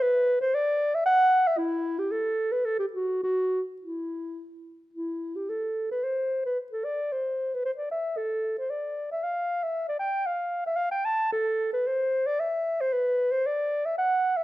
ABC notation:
X:1
M:3/4
L:1/16
Q:1/4=113
K:Em
V:1 name="Clarinet"
B3 c d3 e f3 e | E3 G A3 B A G F2 | F3 z E6 z2 | [K:Am] E3 G A3 B c3 B- |
B A d2 c3 B c d e2 | A3 c d3 e f3 e- | e d g2 f3 e f g a2 | [K:Clyd] A3 B c3 d e3 c |
B3 c d3 e f3 e |]